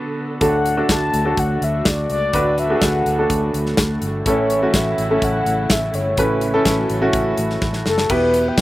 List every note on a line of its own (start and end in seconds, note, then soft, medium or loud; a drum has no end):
0.00 4.22 D3 medium
0.00 0.38 B3 medium
0.00 0.43 B3 medium
0.00 0.41 D4 medium
0.00 0.41 F#4 medium
0.00 0.38 A4 medium
0.00 0.41 A4 medium
0.00 0.43 B4 medium
0.41 0.81 D2 medium
0.41 1.09 A2 medium
0.41 0.74 A3 medium
0.41 8.06 A3 medium
0.41 0.74 D4 medium
0.41 0.74 F#4 medium
0.41 4.22 F#4 medium
0.41 0.74 A4 medium
0.41 0.87 F#5 loud
0.41 kick medium
0.41 closed hi-hat medium
0.66 closed hi-hat medium
0.77 1.21 A3 medium
0.77 1.21 D4 medium
0.77 1.21 F#4 medium
0.77 1.21 A4 medium
0.89 1.09 D2 medium
0.89 1.41 A5 loud
0.89 kick medium
0.89 snare medium
0.89 closed hi-hat medium
1.14 1.33 D2 medium
1.14 closed hi-hat medium
1.25 2.12 A3 medium
1.25 2.13 D4 medium
1.25 2.13 F#4 soft
1.25 2.13 A4 medium
1.37 1.57 D2 medium
1.37 1.65 F#5 medium
1.37 kick medium
1.37 closed hi-hat medium
1.61 1.81 D2 medium
1.61 1.89 E5 medium
1.61 closed hi-hat medium
1.85 2.05 D2 medium
1.85 2.11 D5 medium
1.85 kick loud
1.85 snare loud
1.85 closed hi-hat medium
2.10 2.29 C#2 medium
2.10 2.56 D5 medium
2.10 closed hi-hat medium
2.33 2.73 D2 medium
2.33 3.02 A2 medium
2.33 2.67 A3 medium
2.33 2.67 D4 medium
2.33 2.67 F#4 medium
2.33 2.67 B4 medium
2.33 kick medium
2.33 closed hi-hat medium
2.58 2.86 E5 medium
2.58 closed hi-hat medium
2.70 3.13 A3 medium
2.70 3.14 D4 medium
2.70 3.14 F#4 medium
2.70 2.76 G#4 medium
2.76 3.17 A4 medium
2.81 3.01 D2 medium
2.81 3.55 F#5 medium
2.81 kick medium
2.81 snare medium
2.81 closed hi-hat medium
3.06 3.25 D2 medium
3.06 closed hi-hat medium
3.19 4.05 A3 medium
3.19 4.06 D4 soft
3.19 4.06 F#4 soft
3.19 4.06 A4 medium
3.30 3.50 D2 medium
3.30 kick medium
3.30 closed hi-hat medium
3.54 3.73 D2 medium
3.54 closed hi-hat medium
3.66 snare soft
3.77 3.98 D2 medium
3.77 kick loud
3.77 snare loud
3.77 closed hi-hat medium
4.01 4.21 G1 medium
4.01 closed hi-hat medium
4.25 4.65 A1 medium
4.25 4.94 A2 medium
4.25 8.06 C#3 medium
4.25 4.94 E3 medium
4.25 4.59 A3 medium
4.25 4.59 C#4 medium
4.25 6.16 E4 medium
4.25 4.59 E4 medium
4.25 4.59 A4 medium
4.25 4.77 C#5 medium
4.25 kick loud
4.25 closed hi-hat medium
4.50 closed hi-hat medium
4.62 5.06 A3 medium
4.62 5.06 C#4 medium
4.62 5.06 E4 medium
4.62 5.06 F#4 medium
4.74 4.94 A1 medium
4.74 5.26 E5 loud
4.74 kick medium
4.74 snare medium
4.74 closed hi-hat medium
4.98 5.18 A1 medium
4.98 closed hi-hat medium
5.10 5.97 A3 medium
5.10 5.97 C#4 medium
5.10 5.97 E4 medium
5.10 5.98 A4 medium
5.22 5.42 A1 medium
5.22 5.73 F#5 loud
5.22 kick medium
5.22 closed hi-hat medium
5.46 5.66 A1 medium
5.46 closed hi-hat medium
5.70 5.90 A1 medium
5.70 5.96 E5 medium
5.70 kick medium
5.70 snare loud
5.70 closed hi-hat medium
5.94 6.13 G1 medium
5.94 6.42 C#5 medium
5.94 closed hi-hat medium
6.17 6.57 A1 medium
6.17 6.86 A2 medium
6.17 6.86 E3 medium
6.17 6.51 A3 medium
6.17 6.51 C#4 medium
6.17 6.51 E4 medium
6.17 8.09 F#4 medium
6.17 6.51 B4 medium
6.17 kick medium
6.17 closed hi-hat medium
6.41 closed hi-hat medium
6.53 6.97 A3 medium
6.53 6.98 C#4 medium
6.53 6.97 E4 medium
6.53 6.97 A4 medium
6.65 6.85 A1 medium
6.65 kick medium
6.65 snare medium
6.65 closed hi-hat medium
6.90 7.10 A1 medium
6.90 closed hi-hat medium
7.01 7.89 A3 medium
7.01 7.89 C#4 medium
7.01 7.89 E4 medium
7.01 7.89 F#4 medium
7.13 7.33 A1 medium
7.13 kick medium
7.13 closed hi-hat medium
7.38 7.57 A1 medium
7.38 closed hi-hat medium
7.50 snare soft
7.61 7.82 A1 medium
7.61 kick medium
7.61 snare soft
7.73 snare soft
7.86 8.06 F#1 medium
7.86 8.13 A4 loud
7.86 snare medium
7.98 snare medium
8.10 8.49 E1 medium
8.10 8.61 B2 soft
8.10 8.61 E3 medium
8.10 8.61 B3 medium
8.10 8.61 E4 medium
8.10 8.61 G4 medium
8.10 8.61 B4 medium
8.10 8.50 B4 loud
8.10 kick medium
8.10 crash medium
8.34 closed hi-hat medium
8.48 8.61 G5 loud
8.58 8.61 E1 medium
8.58 kick medium
8.58 snare medium
8.58 closed hi-hat medium